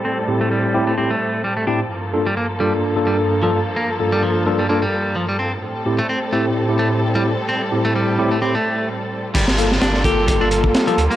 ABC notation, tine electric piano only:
X:1
M:4/4
L:1/16
Q:"Swing 16ths" 1/4=129
K:Gdor
V:1 name="Tine electric piano"
z2 [A,,CEG]4 [A,,CEG] z [A,,CEG] z4 z [A,,CEG] z | z2 [G,,B,DFA] z3 [G,,B,DFA]3 [G,,B,DFA]4 [G,,B,DFA] z2 | z2 [G,,B,DFA]4 [G,,B,DFA] z [G,,B,DFA] z6 z | z2 [A,,CEG] z3 [A,,CEG]3 [A,,CEG]4 [A,,CEG] z2 |
z2 [A,,CEG]4 [A,,CEG] z [A,,CEG] z6 z | z2 [B,FA] z3 [B,FA]3 [B,FA]4 [B,FA] z2 |]